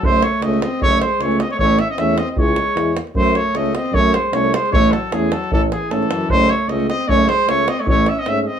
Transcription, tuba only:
X:1
M:2/4
L:1/8
Q:"Swing 16ths" 1/4=153
K:F#dor
V:1 name="Tuba" clef=bass
F,,,2 C,,2 | F,,,2 C,,2 | A,,,2 E,,2 | C,,2 E,,2 |
F,,2 C,,2 | F,,2 ^B,,,2 | A,,,2 E,,2 | A,,,2 G,, F,, |
F,,,2 C,,2 | F,,,2 C,,2 | A,,,2 G,,2 |]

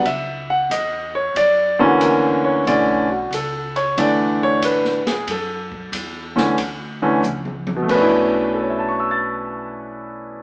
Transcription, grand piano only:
X:1
M:4/4
L:1/8
Q:"Swing" 1/4=92
K:Bm
V:1 name="Grand piano"
e f ^d c =d F ^A c | d F A c d c B ^G | A3 z4 z | z2 [Aceac'e'a']6 |]
V:2 name="Grand piano"
z4 z [D,E,^A,C]3 | [D,E,A,C] z3 [D,E,A,D]3 z | z3 [D,E,A,C] z [D,E,A,C] z2 | [B,,A,CDEB]8 |]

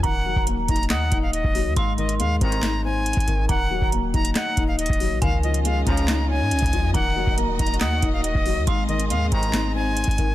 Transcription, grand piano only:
X:1
M:4/4
L:1/8
Q:1/4=139
K:Ebdor
V:1 name="Grand piano"
E, G, B, E e E2 G, | A,, E, A, C E C2 E, | E, G, B, E e E2 G, | E, F, A, D E D2 F, |
E, G, B, E e E2 G, | A,, E, A, C E C2 E, |]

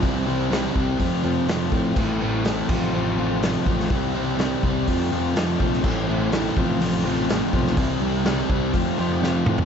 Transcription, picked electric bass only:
X:1
M:4/4
L:1/8
Q:1/4=124
K:Flyd
V:1 name="Picked electric bass" clef=bass
C,,3 C,, F,, F,,2 A,, | A,,,3 A,,,4 A,,, | C,,3 C,, F,, F,,2 _B,,, | A,,,3 A,,,4 B,,, |
C,,3 C,, F,, F,,2 A,, |]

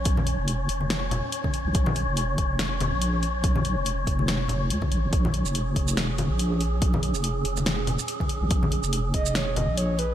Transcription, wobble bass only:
X:1
M:4/4
L:1/16
Q:"Swing 16ths" 1/4=142
K:Bbm
V:1 name="Wobble bass" clef=bass
B,,,3 F,,,3 F,,,4- F,,, z4 B,,, | B,,,3 F,,,3 F,,,4- F,,, B,,,4- B,,, | B,,,3 F,,,3 F,,,6 E,, z B,,, F,,, | B,,,3 F,,,3 F,,,4- F,,, B,,,4- B,,, |
B,,,3 F,,,3 F,,,4- F,,, z4 B,,, | B,,,3 F,,,3 F,,,4- F,,, B,,,4- B,,, |]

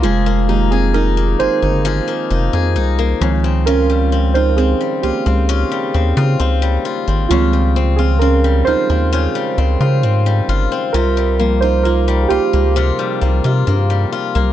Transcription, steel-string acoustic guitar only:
X:1
M:4/4
L:1/16
Q:1/4=66
K:Dblyd
V:1 name="Steel-string acoustic guitar"
[F,A] B, E A E B, A E [F,A] B, E A E B, D, C | [D,F] G, C F C G, F C [D,F] G, C F C G, F C | [D,F] G, C F C G, F C [D,F] G, C F C G, F C | [C,F] G, B, F B, G, F B, [C,F] G, B, F B, G, F B, |]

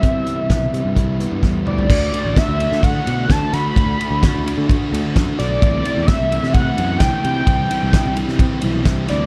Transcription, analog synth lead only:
X:1
M:4/4
L:1/8
Q:1/4=129
K:Dmix
V:1 name="Analog synth lead"
e6 z d- | d2 e2 f2 a b- | b3 z4 d- | d2 e2 f2 g g- |
g3 z4 d |]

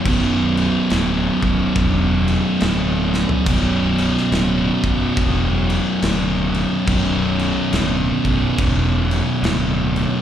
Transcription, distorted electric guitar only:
X:1
M:4/4
L:1/8
Q:"Swing" 1/4=70
K:Bm
V:1 name="Distorted electric guitar" clef=bass
[B,,,F,,B,,]8 | [B,,,F,,B,,]8 | [B,,,F,,B,,]8 |]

